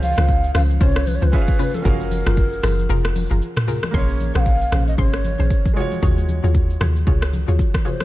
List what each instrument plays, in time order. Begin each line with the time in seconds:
Already playing: log drum bass C#2, synth pluck C#4 F4 C5, grand piano C#4 F4 G#4 C5 F5
0.03 bansuri F5, open hi-hat, high conga, shaker
0.17 log drum bass C#2, synth pluck C#4 F4 C5, cross-stick, shaker
0.28 kick, shaker
0.44 shaker
0.54 log drum bass C#2, synth pluck C#4 F4 C5, bansuri F5, cross-stick, open hi-hat, high conga, shaker
0.70 shaker
0.80 log drum bass C2, synth pluck C#4 F4 C5, bansuri C#5, kick, low conga, shaker
0.96 cross-stick, shaker
1.07 bansuri B4, open hi-hat, high conga, shaker
1.15 bansuri C#5
1.22 log drum bass C#2, synth pluck C#4 F4 C5, bansuri B4, shaker
1.32 grand piano C#4 F4 G#4 B4 E5, kick, shaker
1.42 grand piano F5
1.48 kick, shaker
1.59 synth pluck C#4 F4 B4, open hi-hat, low conga, shaker
1.74 bansuri A#4, high conga, shaker
1.82 log drum bass F#1, grand piano C#4 F#4 G#4, synth pluck F4 G#4 A#4, kick, low conga, shaker
1.87 grand piano A#4 F5
2.00 shaker
2.11 open hi-hat, high conga, shaker
2.26 log drum bass F#1, synth pluck F4 G#4 A#4, cross-stick, shaker
2.37 kick, shaker
2.53 shaker
2.63 log drum bass F#1, synth pluck F4 G#4 A#4, cross-stick, open hi-hat, high conga, shaker
2.79 shaker
2.89 log drum bass F1, synth pluck F4 G#4 A#4, low conga, shaker
3.05 cross-stick, shaker
3.16 open hi-hat, high conga, shaker
3.30 log drum bass F#1, synth pluck F4 G#4 A#4, shaker
3.42 shaker
3.57 cross-stick, mid tom, shaker
3.67 synth pluck F4 G#4 A#4, open hi-hat, low conga, shaker
3.83 cross-stick, high conga, shaker
3.91 log drum bass A#1, grand piano A#3 C#4, synth pluck C#4 G#4 C6, bansuri C#5, kick, low conga, shaker
3.96 grand piano G#4 C#5
4.09 shaker
4.20 high conga, shaker
4.35 log drum bass A#1, synth pluck C#4 G#4 C5, bansuri F#5, cross-stick, shaker
4.40 bansuri F5
4.46 kick, shaker
4.61 shaker
4.72 log drum bass A#1, synth pluck C#4 G#4 C5, cross-stick, high conga, low conga, shaker
4.87 bansuri D#5, shaker
4.98 log drum bass G#1, synth pluck C#4 G#4 C6, bansuri C#5, kick, low conga, shaker
5.13 cross-stick, shaker
5.24 high conga, shaker
5.39 log drum bass A#1, synth pluck C#4 G#4 C5, shaker
5.50 kick, shaker
5.65 kick, high conga, shaker
5.73 grand piano G#3 F4, synth pluck F4 F#4 G#4 C#5, bansuri C#5, low conga, shaker
5.78 grand piano F#4 C#5
5.92 high conga, shaker
6.02 log drum bass D#2, synth pluck F4 F#4 G#4 C#5, kick, low conga, shaker
6.18 shaker
6.29 high conga, shaker
6.43 log drum bass D#2, synth pluck F4 F#4 G#4 C#5, shaker
6.55 kick, shaker
6.70 shaker
6.80 log drum bass D#2, synth pluck F4 F#4 G#4 C#5, cross-stick, high conga, low conga, shaker
6.96 shaker
7.07 log drum bass C#2, synth pluck F4 F#4 G#4 C#5, kick, low conga, shaker
7.22 cross-stick, shaker
7.33 high conga, shaker
7.48 log drum bass D#2, synth pluck F4 F#4 G#4 C#5, shaker
7.59 kick, shaker
7.74 kick, cross-stick, high conga, shaker
7.85 synth pluck F4 F#4 G#4 C#5, bansuri C5, low conga, shaker
8.00 cross-stick, high conga, shaker